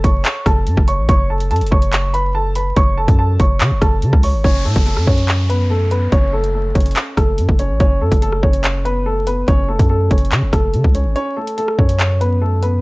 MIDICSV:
0, 0, Header, 1, 5, 480
1, 0, Start_track
1, 0, Key_signature, 3, "minor"
1, 0, Tempo, 419580
1, 1245, Time_signature, 4, 2, 24, 8
1, 14660, End_track
2, 0, Start_track
2, 0, Title_t, "Grand piano"
2, 0, Program_c, 0, 0
2, 43, Note_on_c, 0, 85, 80
2, 52, Note_on_c, 0, 73, 60
2, 495, Note_off_c, 0, 85, 0
2, 500, Note_off_c, 0, 73, 0
2, 526, Note_on_c, 0, 81, 83
2, 534, Note_on_c, 0, 69, 62
2, 977, Note_off_c, 0, 81, 0
2, 981, Note_off_c, 0, 69, 0
2, 1005, Note_on_c, 0, 85, 87
2, 1014, Note_on_c, 0, 73, 61
2, 1228, Note_off_c, 0, 85, 0
2, 1237, Note_off_c, 0, 73, 0
2, 1245, Note_on_c, 0, 85, 104
2, 1254, Note_on_c, 0, 73, 84
2, 1472, Note_off_c, 0, 85, 0
2, 1477, Note_off_c, 0, 73, 0
2, 1488, Note_on_c, 0, 81, 85
2, 1497, Note_on_c, 0, 69, 63
2, 1706, Note_off_c, 0, 81, 0
2, 1716, Note_off_c, 0, 69, 0
2, 1723, Note_on_c, 0, 81, 96
2, 1733, Note_on_c, 0, 69, 67
2, 1951, Note_off_c, 0, 81, 0
2, 1956, Note_off_c, 0, 69, 0
2, 1960, Note_on_c, 0, 85, 91
2, 1969, Note_on_c, 0, 73, 68
2, 2414, Note_off_c, 0, 85, 0
2, 2418, Note_off_c, 0, 73, 0
2, 2444, Note_on_c, 0, 83, 94
2, 2453, Note_on_c, 0, 71, 64
2, 2672, Note_off_c, 0, 83, 0
2, 2676, Note_off_c, 0, 71, 0
2, 2685, Note_on_c, 0, 81, 89
2, 2694, Note_on_c, 0, 69, 66
2, 2912, Note_off_c, 0, 81, 0
2, 2917, Note_off_c, 0, 69, 0
2, 2925, Note_on_c, 0, 83, 84
2, 2933, Note_on_c, 0, 71, 60
2, 3152, Note_off_c, 0, 83, 0
2, 3157, Note_off_c, 0, 71, 0
2, 3165, Note_on_c, 0, 85, 106
2, 3175, Note_on_c, 0, 73, 79
2, 3392, Note_off_c, 0, 85, 0
2, 3397, Note_off_c, 0, 73, 0
2, 3404, Note_on_c, 0, 81, 88
2, 3413, Note_on_c, 0, 69, 72
2, 3629, Note_off_c, 0, 81, 0
2, 3636, Note_off_c, 0, 69, 0
2, 3646, Note_on_c, 0, 81, 88
2, 3654, Note_on_c, 0, 69, 64
2, 3873, Note_off_c, 0, 81, 0
2, 3877, Note_off_c, 0, 69, 0
2, 3889, Note_on_c, 0, 85, 76
2, 3898, Note_on_c, 0, 73, 61
2, 4338, Note_off_c, 0, 85, 0
2, 4343, Note_off_c, 0, 73, 0
2, 4366, Note_on_c, 0, 81, 82
2, 4376, Note_on_c, 0, 69, 60
2, 4817, Note_off_c, 0, 81, 0
2, 4822, Note_off_c, 0, 69, 0
2, 4845, Note_on_c, 0, 85, 75
2, 4854, Note_on_c, 0, 73, 58
2, 5065, Note_off_c, 0, 73, 0
2, 5072, Note_off_c, 0, 85, 0
2, 5082, Note_on_c, 0, 73, 105
2, 5092, Note_on_c, 0, 61, 85
2, 5311, Note_off_c, 0, 73, 0
2, 5316, Note_off_c, 0, 61, 0
2, 5323, Note_on_c, 0, 69, 82
2, 5333, Note_on_c, 0, 57, 69
2, 5547, Note_off_c, 0, 69, 0
2, 5556, Note_off_c, 0, 57, 0
2, 5565, Note_on_c, 0, 69, 84
2, 5574, Note_on_c, 0, 57, 64
2, 5792, Note_off_c, 0, 69, 0
2, 5797, Note_off_c, 0, 57, 0
2, 5804, Note_on_c, 0, 73, 79
2, 5813, Note_on_c, 0, 61, 69
2, 6256, Note_off_c, 0, 73, 0
2, 6260, Note_off_c, 0, 61, 0
2, 6285, Note_on_c, 0, 71, 79
2, 6295, Note_on_c, 0, 59, 62
2, 6512, Note_off_c, 0, 71, 0
2, 6517, Note_off_c, 0, 59, 0
2, 6523, Note_on_c, 0, 69, 80
2, 6532, Note_on_c, 0, 57, 65
2, 6751, Note_off_c, 0, 69, 0
2, 6756, Note_off_c, 0, 57, 0
2, 6763, Note_on_c, 0, 71, 81
2, 6773, Note_on_c, 0, 59, 61
2, 6991, Note_off_c, 0, 71, 0
2, 6996, Note_off_c, 0, 59, 0
2, 7005, Note_on_c, 0, 73, 99
2, 7014, Note_on_c, 0, 61, 78
2, 7232, Note_off_c, 0, 73, 0
2, 7237, Note_off_c, 0, 61, 0
2, 7243, Note_on_c, 0, 69, 91
2, 7252, Note_on_c, 0, 57, 72
2, 7466, Note_off_c, 0, 69, 0
2, 7475, Note_off_c, 0, 57, 0
2, 7483, Note_on_c, 0, 69, 75
2, 7492, Note_on_c, 0, 57, 69
2, 7711, Note_off_c, 0, 69, 0
2, 7716, Note_off_c, 0, 57, 0
2, 7724, Note_on_c, 0, 73, 74
2, 7734, Note_on_c, 0, 61, 57
2, 8176, Note_off_c, 0, 73, 0
2, 8181, Note_off_c, 0, 61, 0
2, 8207, Note_on_c, 0, 69, 79
2, 8216, Note_on_c, 0, 57, 60
2, 8657, Note_off_c, 0, 69, 0
2, 8662, Note_off_c, 0, 57, 0
2, 8686, Note_on_c, 0, 73, 83
2, 8696, Note_on_c, 0, 61, 60
2, 8909, Note_off_c, 0, 73, 0
2, 8918, Note_off_c, 0, 61, 0
2, 8926, Note_on_c, 0, 73, 95
2, 8935, Note_on_c, 0, 61, 84
2, 9153, Note_off_c, 0, 73, 0
2, 9157, Note_off_c, 0, 61, 0
2, 9169, Note_on_c, 0, 69, 86
2, 9178, Note_on_c, 0, 57, 59
2, 9388, Note_off_c, 0, 69, 0
2, 9397, Note_off_c, 0, 57, 0
2, 9405, Note_on_c, 0, 69, 92
2, 9414, Note_on_c, 0, 57, 68
2, 9632, Note_off_c, 0, 69, 0
2, 9637, Note_off_c, 0, 57, 0
2, 9642, Note_on_c, 0, 73, 82
2, 9651, Note_on_c, 0, 61, 66
2, 10094, Note_off_c, 0, 73, 0
2, 10099, Note_off_c, 0, 61, 0
2, 10125, Note_on_c, 0, 71, 90
2, 10134, Note_on_c, 0, 59, 60
2, 10352, Note_off_c, 0, 71, 0
2, 10357, Note_off_c, 0, 59, 0
2, 10363, Note_on_c, 0, 69, 88
2, 10373, Note_on_c, 0, 57, 61
2, 10591, Note_off_c, 0, 69, 0
2, 10596, Note_off_c, 0, 57, 0
2, 10602, Note_on_c, 0, 71, 80
2, 10612, Note_on_c, 0, 59, 59
2, 10831, Note_off_c, 0, 71, 0
2, 10836, Note_off_c, 0, 59, 0
2, 10842, Note_on_c, 0, 73, 108
2, 10851, Note_on_c, 0, 61, 77
2, 11070, Note_off_c, 0, 73, 0
2, 11076, Note_off_c, 0, 61, 0
2, 11080, Note_on_c, 0, 69, 85
2, 11089, Note_on_c, 0, 57, 69
2, 11305, Note_off_c, 0, 69, 0
2, 11313, Note_off_c, 0, 57, 0
2, 11322, Note_on_c, 0, 69, 86
2, 11331, Note_on_c, 0, 57, 61
2, 11550, Note_off_c, 0, 69, 0
2, 11555, Note_off_c, 0, 57, 0
2, 11563, Note_on_c, 0, 73, 74
2, 11572, Note_on_c, 0, 61, 59
2, 12015, Note_off_c, 0, 73, 0
2, 12020, Note_off_c, 0, 61, 0
2, 12045, Note_on_c, 0, 69, 77
2, 12054, Note_on_c, 0, 57, 59
2, 12496, Note_off_c, 0, 69, 0
2, 12501, Note_off_c, 0, 57, 0
2, 12524, Note_on_c, 0, 73, 71
2, 12534, Note_on_c, 0, 61, 57
2, 12746, Note_off_c, 0, 73, 0
2, 12755, Note_off_c, 0, 61, 0
2, 12763, Note_on_c, 0, 73, 110
2, 12772, Note_on_c, 0, 61, 82
2, 12991, Note_off_c, 0, 73, 0
2, 12996, Note_off_c, 0, 61, 0
2, 13004, Note_on_c, 0, 69, 84
2, 13014, Note_on_c, 0, 57, 67
2, 13227, Note_off_c, 0, 69, 0
2, 13236, Note_off_c, 0, 57, 0
2, 13244, Note_on_c, 0, 69, 85
2, 13253, Note_on_c, 0, 57, 65
2, 13472, Note_off_c, 0, 69, 0
2, 13477, Note_off_c, 0, 57, 0
2, 13484, Note_on_c, 0, 73, 79
2, 13494, Note_on_c, 0, 61, 67
2, 13935, Note_off_c, 0, 73, 0
2, 13941, Note_off_c, 0, 61, 0
2, 13965, Note_on_c, 0, 71, 80
2, 13974, Note_on_c, 0, 59, 65
2, 14192, Note_off_c, 0, 71, 0
2, 14197, Note_off_c, 0, 59, 0
2, 14203, Note_on_c, 0, 69, 83
2, 14213, Note_on_c, 0, 57, 66
2, 14431, Note_off_c, 0, 69, 0
2, 14436, Note_off_c, 0, 57, 0
2, 14443, Note_on_c, 0, 71, 80
2, 14451, Note_on_c, 0, 59, 62
2, 14660, Note_off_c, 0, 59, 0
2, 14660, Note_off_c, 0, 71, 0
2, 14660, End_track
3, 0, Start_track
3, 0, Title_t, "808-style bass"
3, 0, Program_c, 1, 38
3, 45, Note_on_c, 1, 30, 104
3, 275, Note_off_c, 1, 30, 0
3, 526, Note_on_c, 1, 30, 110
3, 765, Note_on_c, 1, 42, 100
3, 782, Note_off_c, 1, 30, 0
3, 879, Note_off_c, 1, 42, 0
3, 885, Note_on_c, 1, 30, 105
3, 1124, Note_on_c, 1, 33, 103
3, 1141, Note_off_c, 1, 30, 0
3, 1238, Note_off_c, 1, 33, 0
3, 1245, Note_on_c, 1, 30, 109
3, 1724, Note_on_c, 1, 42, 101
3, 1741, Note_off_c, 1, 30, 0
3, 1844, Note_on_c, 1, 30, 99
3, 1861, Note_off_c, 1, 42, 0
3, 1958, Note_off_c, 1, 30, 0
3, 1965, Note_on_c, 1, 30, 106
3, 3119, Note_off_c, 1, 30, 0
3, 3165, Note_on_c, 1, 30, 109
3, 3404, Note_on_c, 1, 29, 103
3, 3422, Note_off_c, 1, 30, 0
3, 3519, Note_off_c, 1, 29, 0
3, 3525, Note_on_c, 1, 42, 99
3, 3871, Note_off_c, 1, 42, 0
3, 3885, Note_on_c, 1, 30, 104
3, 4125, Note_on_c, 1, 49, 98
3, 4142, Note_off_c, 1, 30, 0
3, 4244, Note_on_c, 1, 30, 100
3, 4261, Note_off_c, 1, 49, 0
3, 4359, Note_off_c, 1, 30, 0
3, 4365, Note_on_c, 1, 30, 106
3, 4604, Note_on_c, 1, 49, 103
3, 4621, Note_off_c, 1, 30, 0
3, 4719, Note_off_c, 1, 49, 0
3, 4724, Note_on_c, 1, 37, 107
3, 4964, Note_on_c, 1, 32, 100
3, 4981, Note_off_c, 1, 37, 0
3, 5078, Note_off_c, 1, 32, 0
3, 5084, Note_on_c, 1, 30, 107
3, 5325, Note_on_c, 1, 45, 97
3, 5342, Note_off_c, 1, 30, 0
3, 5439, Note_off_c, 1, 45, 0
3, 5444, Note_on_c, 1, 30, 108
3, 5685, Note_on_c, 1, 42, 101
3, 5702, Note_off_c, 1, 30, 0
3, 5799, Note_off_c, 1, 42, 0
3, 5805, Note_on_c, 1, 42, 103
3, 6959, Note_off_c, 1, 42, 0
3, 7004, Note_on_c, 1, 30, 112
3, 7696, Note_off_c, 1, 30, 0
3, 7725, Note_on_c, 1, 30, 102
3, 7955, Note_off_c, 1, 30, 0
3, 8205, Note_on_c, 1, 30, 107
3, 8445, Note_on_c, 1, 42, 103
3, 8463, Note_off_c, 1, 30, 0
3, 8557, Note_off_c, 1, 42, 0
3, 8564, Note_on_c, 1, 30, 101
3, 8805, Note_on_c, 1, 33, 98
3, 8823, Note_off_c, 1, 30, 0
3, 8919, Note_off_c, 1, 33, 0
3, 8925, Note_on_c, 1, 30, 106
3, 9165, Note_on_c, 1, 42, 99
3, 9182, Note_off_c, 1, 30, 0
3, 9279, Note_off_c, 1, 42, 0
3, 9285, Note_on_c, 1, 30, 101
3, 9631, Note_off_c, 1, 30, 0
3, 9645, Note_on_c, 1, 30, 97
3, 10799, Note_off_c, 1, 30, 0
3, 10844, Note_on_c, 1, 30, 106
3, 11084, Note_on_c, 1, 29, 97
3, 11101, Note_off_c, 1, 30, 0
3, 11198, Note_off_c, 1, 29, 0
3, 11205, Note_on_c, 1, 42, 100
3, 11550, Note_off_c, 1, 42, 0
3, 11564, Note_on_c, 1, 30, 104
3, 11803, Note_on_c, 1, 49, 101
3, 11820, Note_off_c, 1, 30, 0
3, 11924, Note_on_c, 1, 30, 101
3, 11941, Note_off_c, 1, 49, 0
3, 12038, Note_off_c, 1, 30, 0
3, 12044, Note_on_c, 1, 30, 107
3, 12284, Note_on_c, 1, 49, 99
3, 12301, Note_off_c, 1, 30, 0
3, 12398, Note_off_c, 1, 49, 0
3, 12403, Note_on_c, 1, 37, 100
3, 12644, Note_on_c, 1, 32, 99
3, 12661, Note_off_c, 1, 37, 0
3, 12758, Note_off_c, 1, 32, 0
3, 13484, Note_on_c, 1, 42, 99
3, 14639, Note_off_c, 1, 42, 0
3, 14660, End_track
4, 0, Start_track
4, 0, Title_t, "Downlifter"
4, 0, Program_c, 2, 103
4, 5084, Note_on_c, 2, 60, 85
4, 8925, Note_off_c, 2, 60, 0
4, 14660, End_track
5, 0, Start_track
5, 0, Title_t, "Drums"
5, 45, Note_on_c, 9, 36, 97
5, 45, Note_on_c, 9, 42, 77
5, 159, Note_off_c, 9, 42, 0
5, 160, Note_off_c, 9, 36, 0
5, 283, Note_on_c, 9, 42, 86
5, 286, Note_on_c, 9, 39, 115
5, 397, Note_off_c, 9, 42, 0
5, 400, Note_off_c, 9, 39, 0
5, 525, Note_on_c, 9, 37, 104
5, 526, Note_on_c, 9, 36, 103
5, 529, Note_on_c, 9, 42, 82
5, 639, Note_off_c, 9, 37, 0
5, 640, Note_off_c, 9, 36, 0
5, 644, Note_off_c, 9, 42, 0
5, 763, Note_on_c, 9, 42, 78
5, 877, Note_off_c, 9, 42, 0
5, 885, Note_on_c, 9, 36, 93
5, 885, Note_on_c, 9, 37, 66
5, 999, Note_off_c, 9, 36, 0
5, 1000, Note_off_c, 9, 37, 0
5, 1004, Note_on_c, 9, 42, 89
5, 1118, Note_off_c, 9, 42, 0
5, 1244, Note_on_c, 9, 42, 72
5, 1245, Note_on_c, 9, 36, 119
5, 1358, Note_off_c, 9, 42, 0
5, 1359, Note_off_c, 9, 36, 0
5, 1606, Note_on_c, 9, 42, 78
5, 1720, Note_off_c, 9, 42, 0
5, 1724, Note_on_c, 9, 42, 67
5, 1784, Note_off_c, 9, 42, 0
5, 1784, Note_on_c, 9, 42, 65
5, 1844, Note_off_c, 9, 42, 0
5, 1844, Note_on_c, 9, 42, 66
5, 1904, Note_off_c, 9, 42, 0
5, 1904, Note_on_c, 9, 42, 66
5, 1965, Note_on_c, 9, 36, 100
5, 2018, Note_off_c, 9, 42, 0
5, 2079, Note_off_c, 9, 36, 0
5, 2081, Note_on_c, 9, 42, 82
5, 2196, Note_off_c, 9, 42, 0
5, 2201, Note_on_c, 9, 42, 88
5, 2204, Note_on_c, 9, 39, 121
5, 2316, Note_off_c, 9, 42, 0
5, 2318, Note_off_c, 9, 39, 0
5, 2448, Note_on_c, 9, 42, 77
5, 2563, Note_off_c, 9, 42, 0
5, 2922, Note_on_c, 9, 42, 88
5, 3036, Note_off_c, 9, 42, 0
5, 3163, Note_on_c, 9, 42, 74
5, 3164, Note_on_c, 9, 36, 118
5, 3277, Note_off_c, 9, 42, 0
5, 3279, Note_off_c, 9, 36, 0
5, 3525, Note_on_c, 9, 36, 104
5, 3526, Note_on_c, 9, 42, 81
5, 3640, Note_off_c, 9, 36, 0
5, 3640, Note_off_c, 9, 42, 0
5, 3884, Note_on_c, 9, 42, 78
5, 3885, Note_on_c, 9, 36, 96
5, 3999, Note_off_c, 9, 36, 0
5, 3999, Note_off_c, 9, 42, 0
5, 4121, Note_on_c, 9, 42, 87
5, 4124, Note_on_c, 9, 39, 122
5, 4236, Note_off_c, 9, 42, 0
5, 4239, Note_off_c, 9, 39, 0
5, 4364, Note_on_c, 9, 37, 101
5, 4365, Note_on_c, 9, 36, 104
5, 4369, Note_on_c, 9, 42, 80
5, 4479, Note_off_c, 9, 36, 0
5, 4479, Note_off_c, 9, 37, 0
5, 4484, Note_off_c, 9, 42, 0
5, 4601, Note_on_c, 9, 42, 81
5, 4715, Note_off_c, 9, 42, 0
5, 4724, Note_on_c, 9, 36, 100
5, 4724, Note_on_c, 9, 37, 66
5, 4838, Note_off_c, 9, 36, 0
5, 4838, Note_off_c, 9, 37, 0
5, 4841, Note_on_c, 9, 46, 63
5, 4956, Note_off_c, 9, 46, 0
5, 5082, Note_on_c, 9, 42, 67
5, 5084, Note_on_c, 9, 36, 113
5, 5197, Note_off_c, 9, 42, 0
5, 5198, Note_off_c, 9, 36, 0
5, 5445, Note_on_c, 9, 36, 102
5, 5445, Note_on_c, 9, 42, 73
5, 5559, Note_off_c, 9, 36, 0
5, 5559, Note_off_c, 9, 42, 0
5, 5566, Note_on_c, 9, 42, 79
5, 5680, Note_off_c, 9, 42, 0
5, 5682, Note_on_c, 9, 37, 63
5, 5797, Note_off_c, 9, 37, 0
5, 5805, Note_on_c, 9, 36, 93
5, 5919, Note_off_c, 9, 36, 0
5, 5922, Note_on_c, 9, 42, 80
5, 6036, Note_off_c, 9, 42, 0
5, 6042, Note_on_c, 9, 42, 87
5, 6044, Note_on_c, 9, 39, 121
5, 6156, Note_off_c, 9, 42, 0
5, 6159, Note_off_c, 9, 39, 0
5, 6289, Note_on_c, 9, 42, 78
5, 6403, Note_off_c, 9, 42, 0
5, 6762, Note_on_c, 9, 42, 87
5, 6877, Note_off_c, 9, 42, 0
5, 7003, Note_on_c, 9, 42, 70
5, 7004, Note_on_c, 9, 36, 123
5, 7118, Note_off_c, 9, 42, 0
5, 7119, Note_off_c, 9, 36, 0
5, 7365, Note_on_c, 9, 42, 74
5, 7479, Note_off_c, 9, 42, 0
5, 7724, Note_on_c, 9, 42, 65
5, 7725, Note_on_c, 9, 36, 94
5, 7784, Note_off_c, 9, 42, 0
5, 7784, Note_on_c, 9, 42, 61
5, 7839, Note_off_c, 9, 36, 0
5, 7845, Note_off_c, 9, 42, 0
5, 7845, Note_on_c, 9, 42, 65
5, 7904, Note_off_c, 9, 42, 0
5, 7904, Note_on_c, 9, 42, 68
5, 7961, Note_off_c, 9, 42, 0
5, 7961, Note_on_c, 9, 42, 82
5, 7964, Note_on_c, 9, 39, 115
5, 8076, Note_off_c, 9, 42, 0
5, 8078, Note_off_c, 9, 39, 0
5, 8204, Note_on_c, 9, 37, 96
5, 8205, Note_on_c, 9, 36, 104
5, 8209, Note_on_c, 9, 42, 77
5, 8318, Note_off_c, 9, 37, 0
5, 8320, Note_off_c, 9, 36, 0
5, 8323, Note_off_c, 9, 42, 0
5, 8441, Note_on_c, 9, 42, 78
5, 8556, Note_off_c, 9, 42, 0
5, 8564, Note_on_c, 9, 36, 95
5, 8678, Note_off_c, 9, 36, 0
5, 8682, Note_on_c, 9, 42, 86
5, 8796, Note_off_c, 9, 42, 0
5, 8923, Note_on_c, 9, 42, 70
5, 8925, Note_on_c, 9, 36, 123
5, 9038, Note_off_c, 9, 42, 0
5, 9039, Note_off_c, 9, 36, 0
5, 9285, Note_on_c, 9, 36, 97
5, 9286, Note_on_c, 9, 42, 78
5, 9400, Note_off_c, 9, 36, 0
5, 9400, Note_off_c, 9, 42, 0
5, 9406, Note_on_c, 9, 42, 80
5, 9520, Note_off_c, 9, 42, 0
5, 9523, Note_on_c, 9, 37, 63
5, 9638, Note_off_c, 9, 37, 0
5, 9645, Note_on_c, 9, 36, 98
5, 9759, Note_off_c, 9, 36, 0
5, 9762, Note_on_c, 9, 42, 82
5, 9876, Note_off_c, 9, 42, 0
5, 9882, Note_on_c, 9, 42, 88
5, 9885, Note_on_c, 9, 39, 116
5, 9996, Note_off_c, 9, 42, 0
5, 9999, Note_off_c, 9, 39, 0
5, 10129, Note_on_c, 9, 42, 78
5, 10244, Note_off_c, 9, 42, 0
5, 10602, Note_on_c, 9, 42, 87
5, 10716, Note_off_c, 9, 42, 0
5, 10842, Note_on_c, 9, 42, 68
5, 10844, Note_on_c, 9, 36, 118
5, 10957, Note_off_c, 9, 42, 0
5, 10958, Note_off_c, 9, 36, 0
5, 11205, Note_on_c, 9, 36, 103
5, 11205, Note_on_c, 9, 42, 77
5, 11319, Note_off_c, 9, 36, 0
5, 11319, Note_off_c, 9, 42, 0
5, 11564, Note_on_c, 9, 36, 95
5, 11564, Note_on_c, 9, 42, 77
5, 11644, Note_off_c, 9, 42, 0
5, 11644, Note_on_c, 9, 42, 61
5, 11679, Note_off_c, 9, 36, 0
5, 11724, Note_off_c, 9, 42, 0
5, 11724, Note_on_c, 9, 42, 47
5, 11802, Note_off_c, 9, 42, 0
5, 11802, Note_on_c, 9, 42, 87
5, 11804, Note_on_c, 9, 39, 116
5, 11916, Note_off_c, 9, 42, 0
5, 11919, Note_off_c, 9, 39, 0
5, 12044, Note_on_c, 9, 36, 103
5, 12044, Note_on_c, 9, 37, 100
5, 12048, Note_on_c, 9, 42, 78
5, 12158, Note_off_c, 9, 37, 0
5, 12159, Note_off_c, 9, 36, 0
5, 12163, Note_off_c, 9, 42, 0
5, 12281, Note_on_c, 9, 42, 80
5, 12395, Note_off_c, 9, 42, 0
5, 12403, Note_on_c, 9, 36, 91
5, 12518, Note_off_c, 9, 36, 0
5, 12522, Note_on_c, 9, 42, 88
5, 12637, Note_off_c, 9, 42, 0
5, 12763, Note_on_c, 9, 42, 69
5, 12878, Note_off_c, 9, 42, 0
5, 13125, Note_on_c, 9, 42, 77
5, 13240, Note_off_c, 9, 42, 0
5, 13246, Note_on_c, 9, 42, 75
5, 13360, Note_off_c, 9, 42, 0
5, 13363, Note_on_c, 9, 37, 64
5, 13478, Note_off_c, 9, 37, 0
5, 13484, Note_on_c, 9, 36, 97
5, 13599, Note_off_c, 9, 36, 0
5, 13602, Note_on_c, 9, 42, 79
5, 13716, Note_off_c, 9, 42, 0
5, 13722, Note_on_c, 9, 42, 83
5, 13725, Note_on_c, 9, 39, 115
5, 13837, Note_off_c, 9, 42, 0
5, 13839, Note_off_c, 9, 39, 0
5, 13969, Note_on_c, 9, 42, 76
5, 14084, Note_off_c, 9, 42, 0
5, 14443, Note_on_c, 9, 42, 83
5, 14557, Note_off_c, 9, 42, 0
5, 14660, End_track
0, 0, End_of_file